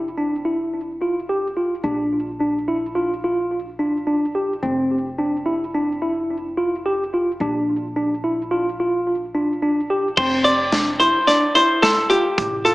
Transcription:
0.00 1.80 F1 medium
0.18 0.35 D4 medium
0.45 0.80 E4 medium
1.02 1.19 F4 soft
1.29 1.46 G4 medium
1.57 1.74 F4 medium
1.84 4.58 A#1 medium
1.84 2.19 D4 medium
2.40 2.58 D4 medium
2.68 2.85 E4 medium
2.95 3.13 F4 medium
3.24 3.59 F4 medium
3.79 3.96 D4 soft
4.07 4.24 D4 medium
4.35 4.52 G4 medium
4.63 7.36 F1 medium
4.63 4.97 C4 medium
5.18 5.36 D4 medium
5.46 5.63 E4 medium
5.74 5.91 D4 medium
6.02 6.37 E4 medium
6.57 6.75 F4 medium
6.86 7.03 G4 medium
7.14 7.31 F4 medium
7.40 10.13 A#1 medium
7.40 7.75 D4 medium
7.96 8.13 D4 medium
8.24 8.41 E4 medium
8.51 8.68 F4 medium
8.80 9.14 F4 medium
9.35 9.52 D4 medium
9.62 9.80 D4 medium
9.90 10.07 G4 medium
10.17 11.11 F1 medium
10.17 10.53 C4 medium
10.17 10.44 C5 medium
10.17 kick medium
10.17 crash medium
10.44 10.99 D5 medium
10.44 closed hi-hat medium
10.72 10.90 D4 medium
10.72 snare loud
10.72 closed hi-hat medium
11.00 11.17 E4 medium
11.00 11.27 C5 medium
11.00 closed hi-hat medium
11.27 11.45 D4 medium
11.27 11.53 D5 medium
11.27 snare soft
11.27 closed hi-hat medium
11.55 11.90 E4 medium
11.55 11.84 C5 medium
11.55 closed hi-hat medium
11.82 12.09 A4 medium
11.82 snare medium
11.82 closed hi-hat medium
12.10 12.27 F4 medium
12.10 12.61 G4 medium
12.10 closed hi-hat soft
12.38 12.75 A1 medium
12.38 12.55 G4 medium
12.38 kick medium
12.38 closed hi-hat medium
12.65 12.75 F4 medium
12.65 12.75 A4 medium
12.65 closed hi-hat medium

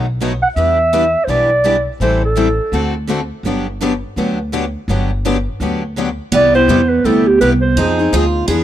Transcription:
0.00 0.42 B1 medium
0.20 0.31 B2 medium
0.20 0.31 D#3 medium
0.20 0.31 F#3 medium
0.20 0.32 A3 medium
0.20 0.31 B3 medium
0.20 0.31 D#4 medium
0.20 0.32 F#4 medium
0.20 0.32 A4 medium
0.42 0.48 F#5 medium
0.56 1.14 E2 medium
0.56 0.77 E3 medium
0.56 0.77 G3 medium
0.56 0.77 B3 medium
0.56 0.77 D4 medium
0.56 0.77 E4 medium
0.56 0.78 G4 medium
0.56 0.77 B4 medium
0.56 1.26 E5 medium
0.93 1.03 E3 medium
0.93 1.03 G3 medium
0.93 1.04 B3 medium
0.93 1.04 D4 medium
0.93 1.04 E4 medium
0.93 1.04 G4 medium
0.93 1.04 B4 medium
1.24 1.85 B1 medium
1.24 1.49 B3 medium
1.24 1.31 C5 medium
1.29 1.49 E3 medium
1.29 1.49 G3 medium
1.29 1.49 D4 medium
1.29 1.49 E4 medium
1.29 1.49 G4 medium
1.29 1.50 B4 medium
1.29 1.86 D5 medium
1.64 1.75 E3 medium
1.64 1.75 G3 medium
1.64 1.76 B3 medium
1.64 1.75 D4 medium
1.64 1.75 E4 medium
1.64 1.76 G4 medium
1.64 1.76 B4 medium
2.00 2.58 A1 medium
2.00 2.21 E3 medium
2.00 2.21 G3 medium
2.00 2.21 C4 medium
2.00 2.22 E4 medium
2.00 2.22 A4 medium
2.00 2.21 C5 medium
2.25 2.92 A4 medium
2.36 2.47 E3 medium
2.36 2.47 G3 medium
2.36 2.47 C4 medium
2.36 2.47 E4 medium
2.36 2.47 A4 medium
2.72 3.30 D2 medium
2.72 2.93 D3 medium
2.72 2.93 A3 medium
2.72 2.93 C4 medium
2.72 2.93 F#4 medium
2.72 2.94 A4 medium
3.07 3.19 D3 medium
3.07 3.19 A3 medium
3.07 3.19 C4 medium
3.07 3.19 F#4 medium
3.07 3.20 A4 medium
3.43 4.01 G1 medium
3.43 3.65 D3 medium
3.43 3.65 F#3 medium
3.43 3.65 B3 medium
3.43 3.66 D4 medium
3.43 3.66 G4 medium
3.81 3.91 D3 medium
3.81 3.92 F#3 medium
3.81 3.92 B3 medium
3.81 3.92 D4 medium
3.81 3.92 G4 medium
4.16 4.74 D2 medium
4.16 4.37 D3 medium
4.16 4.38 F#3 medium
4.16 4.38 B3 medium
4.16 4.38 D4 medium
4.16 4.38 G4 medium
4.52 4.63 D3 medium
4.52 4.64 F#3 medium
4.52 4.64 B3 medium
4.52 4.64 D4 medium
4.52 4.64 G4 medium
4.88 5.46 G1 medium
4.88 5.09 D3 medium
4.88 5.09 F#3 medium
4.88 5.09 B3 medium
4.88 5.10 D4 medium
4.88 5.10 G4 medium
5.25 5.36 D3 medium
5.25 5.36 F#3 medium
5.25 5.36 B3 medium
5.25 5.36 D4 medium
5.25 5.36 G4 medium
5.60 6.18 D2 medium
5.60 5.81 D3 medium
5.60 5.81 F#3 medium
5.60 5.82 B3 medium
5.60 5.81 D4 medium
5.60 5.82 G4 medium
5.96 6.07 D3 medium
5.96 6.08 F#3 medium
5.96 6.08 B3 medium
5.96 6.08 D4 medium
5.96 6.08 G4 medium
6.32 6.67 C2 medium
6.32 6.53 C3 medium
6.32 6.53 G3 medium
6.32 6.54 B3 medium
6.32 6.54 E4 medium
6.32 6.54 G4 medium
6.32 6.54 D5 loud
6.55 6.69 B3 soft
6.55 6.69 E4 soft
6.55 6.68 G4 medium
6.55 6.90 C5 loud
6.68 7.03 E2 medium
6.68 6.80 C3 medium
6.68 6.80 G3 medium
6.68 6.80 B3 medium
6.68 6.80 E4 medium
6.68 6.80 G4 medium
6.89 7.07 B4 medium
7.04 7.39 D2 medium
7.04 7.25 C3 medium
7.04 7.25 G3 medium
7.04 7.25 B3 medium
7.04 7.26 E4 medium
7.04 7.26 G4 medium
7.04 7.29 A4 medium
7.27 7.40 G4 medium
7.40 7.76 C2 medium
7.40 7.52 C3 medium
7.40 7.52 G3 medium
7.40 7.52 B3 medium
7.40 7.52 E4 medium
7.40 7.52 G4 medium
7.40 7.50 B4 medium
7.62 8.30 C5 medium
7.76 8.11 F2 medium
7.76 7.97 F3 medium
7.76 7.98 C4 medium
7.76 7.98 D#4 medium
7.76 7.98 G#4 medium
7.99 8.12 C4 soft
7.99 8.12 D#4 medium
7.99 8.12 G#4 medium
8.13 8.47 D2 medium
8.13 8.24 F3 medium
8.13 8.24 C4 medium
8.13 8.24 D#4 medium
8.13 8.47 F4 medium
8.13 8.24 G#4 medium
8.48 8.64 E2 medium
8.48 8.64 E3 medium
8.48 8.64 B3 medium
8.48 8.64 D4 medium
8.48 8.64 G#4 medium
8.48 8.64 B4 medium

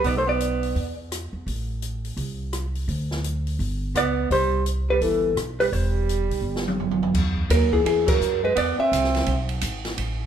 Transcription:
0.04 0.71 B1 medium
0.04 0.16 B3 medium
0.04 0.18 D5 loud
0.04 kick soft
0.04 open hi-hat soft
0.17 0.26 A3 medium
0.17 0.27 C5 medium
0.26 0.94 B3 medium
0.26 0.95 D5 medium
0.40 closed hi-hat soft
0.63 open hi-hat soft
0.75 1.29 E2 medium
0.75 kick soft
0.75 open hi-hat soft
1.12 cross-stick medium
1.12 closed hi-hat medium
1.33 1.45 E2 medium
1.47 2.14 A1 medium
1.47 kick soft
1.47 open hi-hat soft
1.82 closed hi-hat soft
2.05 open hi-hat soft
2.17 2.84 C2 medium
2.17 kick soft
2.17 open hi-hat soft
2.53 cross-stick medium
2.53 closed hi-hat soft
2.75 open hi-hat soft
2.88 3.55 D2 medium
2.88 kick soft
2.88 open hi-hat soft
3.11 snare soft
3.24 closed hi-hat medium
3.47 open hi-hat soft
3.59 3.92 G1 medium
3.59 kick soft
3.59 open hi-hat soft
3.94 4.27 C#2 medium
3.94 4.28 B3 medium
3.94 4.32 D5 loud
3.94 cross-stick medium
3.94 closed hi-hat medium
4.30 4.98 C2 medium
4.30 4.63 G3 medium
4.30 4.64 C5 medium
4.30 kick soft
4.30 open hi-hat soft
4.66 closed hi-hat medium
4.89 5.04 G3 medium
4.89 5.02 B4 medium
5.01 5.34 G1 medium
5.01 5.37 E3 medium
5.01 5.37 A4 medium
5.01 kick soft
5.01 open hi-hat soft
5.35 5.69 B1 medium
5.35 cross-stick medium
5.35 closed hi-hat medium
5.59 5.72 G3 medium
5.59 5.65 B4 medium
5.59 open hi-hat soft
5.72 6.26 E1 medium
5.72 6.79 G3 medium
5.72 6.79 C5 medium
5.72 kick soft
5.72 open hi-hat soft
6.09 closed hi-hat medium
6.29 6.41 B1 medium
6.29 open hi-hat soft
6.42 7.10 G1 medium
6.56 snare soft
6.68 high tom medium
6.80 floor tom medium
6.91 floor tom medium
7.03 floor tom medium
7.14 7.48 E2 medium
7.14 kick medium
7.14 crash medium
7.37 kick soft
7.49 7.84 D#2 medium
7.49 7.70 F#3 medium
7.49 7.71 A#4 medium
7.49 kick soft
7.49 hi-hat pedal medium
7.49 ride medium
7.72 7.83 E3 medium
7.72 7.85 G#4 medium
7.72 kick medium
7.84 8.20 E2 medium
7.84 8.05 E3 medium
7.84 8.09 G#4 medium
7.84 kick soft
7.84 ride medium
8.06 8.40 F#3 medium
8.06 8.41 A#4 medium
8.06 kick medium
8.06 crash medium
8.20 8.55 F#2 medium
8.20 hi-hat pedal medium
8.43 8.55 G#3 medium
8.43 8.56 B4 medium
8.55 8.77 E2 medium
8.55 8.77 B3 medium
8.55 8.79 D5 loud
8.55 kick soft
8.55 ride medium
8.78 9.46 C4 medium
8.78 9.46 E5 medium
8.78 muted upright bass stroke soft
8.92 9.26 C2 medium
8.92 kick soft
8.92 hi-hat pedal medium
8.92 ride medium
9.04 snare soft
9.15 snare soft
9.15 ride soft
9.26 9.61 B1 medium
9.26 kick soft
9.26 ride medium
9.49 ride soft
9.61 9.97 G#1 medium
9.61 kick soft
9.61 hi-hat pedal medium
9.61 ride medium
9.85 snare soft
9.85 ride soft
9.97 10.26 A1 medium
9.97 kick soft
9.97 ride medium

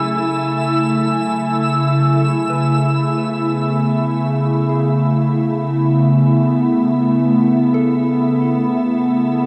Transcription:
0.00 9.46 C#3 medium
0.00 2.34 F#3 medium
0.00 2.30 A3 medium
0.00 9.46 A3 medium
0.00 2.30 E4 medium
0.00 9.46 E4 medium
0.00 9.46 G#5 medium
0.00 2.35 E6 medium
2.31 9.46 A3 medium
2.31 9.46 E4 medium
2.50 4.30 B4 soft
3.13 9.46 B3 medium
4.69 6.50 G#4 soft
7.74 9.46 A4 medium

